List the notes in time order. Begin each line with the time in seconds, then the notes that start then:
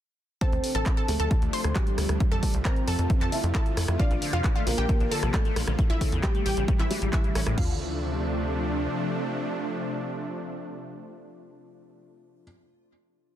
0.41 C4 A4 C5 A5, kick, closed hi-hat
0.52 D2 C3 F3 A3 D4, closed hi-hat
0.64 open hi-hat
0.75 A1 A4 A5, closed hi-hat
0.86 kick, cross-stick, clap, closed hi-hat
0.97 C3 F3 A3 D4 A4 A5, closed hi-hat
1.08 D2 C3 F3 A3 D4 A4, open hi-hat
1.20 D2 C3 F3 A3 D4 A4 A5, closed hi-hat
1.31 kick, closed hi-hat
1.42 D2 C3 F3 A3 D4, closed hi-hat
1.53 C5 C6, open hi-hat
1.64 D2, cross-stick, closed hi-hat
1.75 C3 F3 G3 A3 D4 G4, kick, clap, closed hi-hat
1.87 C3 F3 A3 D4, closed hi-hat
1.98 D2 C3 F3 A3 D4, cross-stick, open hi-hat
2.09 D2 C3 F3 A3 D4, cross-stick, closed hi-hat
2.20 kick, closed hi-hat
2.32 F2 C3 F3 A3 F4 A4 A5, closed hi-hat
2.43 kick, open hi-hat
2.54 C2, closed hi-hat
2.65 C4 A#4 C5 A#5, kick, cross-stick, clap, closed hi-hat
2.76 C3 F3 A3 F4, closed hi-hat
2.88 F2 C3 F3 A3 F4 A4 A5, open hi-hat
2.99 F2 C3 F3 A3 F4, closed hi-hat
3.10 kick, closed hi-hat
3.21 F2 C3 F3 A3 F4 A4 A5, clap, closed hi-hat
3.32 E4 E5, open hi-hat
3.44 F2, closed hi-hat
3.55 C3 F3 A3 F4 A4 A5, kick, clap, closed hi-hat
3.66 C3 F3 A3 F4, closed hi-hat
3.77 F2 C3 F3 A3 F4, cross-stick, open hi-hat
3.88 F2 C3 F3 A3 F4, cross-stick, closed hi-hat
3.99 D3 D4 F4 D5 F5, kick, closed hi-hat
4.11 A#1 D3 E3 F3 A#3 F4, closed hi-hat
4.22 D3, open hi-hat
4.33 F2 C3 F4 F5, closed hi-hat
4.44 E3, kick, cross-stick, clap, closed hi-hat
4.55 D3 F3 A3 A#3 F4 F5, closed hi-hat
4.66 A#1 D3 F3 A#3 F4 A#4, open hi-hat
4.78 A#1 D3 F3 A#3 F4 G4 G5, closed hi-hat
4.89 D3, kick, closed hi-hat
5.00 A#1 D3 F3 A#3 D4 F4, closed hi-hat
5.11 D3 A4 A5, open hi-hat
5.23 A#1 C3, cross-stick, closed hi-hat
5.34 D3 F3 A3 A#3 F4 A4, kick, clap, closed hi-hat
5.45 D3 F3 A3 A#3 F4, closed hi-hat
5.56 A#1 D3 F3 A#3 F4, cross-stick, open hi-hat
5.67 A#1 D3 F3 A#3 F4, cross-stick, closed hi-hat
5.79 C#3, kick, closed hi-hat
5.90 A1 C#3 E3 A3 E4 E5, closed hi-hat
6.01 C#3, kick, open hi-hat
6.12 E2 C#3, closed hi-hat
6.23 G3 G4 G5, kick, cross-stick, clap, closed hi-hat
6.35 C#3 E3 A3 E4, closed hi-hat
6.46 A1 C#3 E3 A3 E4 G4 G5, open hi-hat
6.57 A1 C#3 E3 A3 E4, closed hi-hat
6.68 C#3, kick, closed hi-hat
6.79 A1 C#3 E3 A3 C#4 E4 E5, clap, closed hi-hat
6.90 E3 G3 G4, open hi-hat
7.02 A1 G3, closed hi-hat
7.13 C#3 E3 A3 E4 E5, kick, clap, closed hi-hat
7.24 C#3 E3 A3 E4, closed hi-hat
7.35 A1 C#3 E3 A3 C#4 E4, cross-stick, open hi-hat
7.47 A1 A2 C#3 E3 A3 E4, cross-stick
7.58 D2 C3 D3 F3 A3 D4 F4 F5, kick, floor tom, crash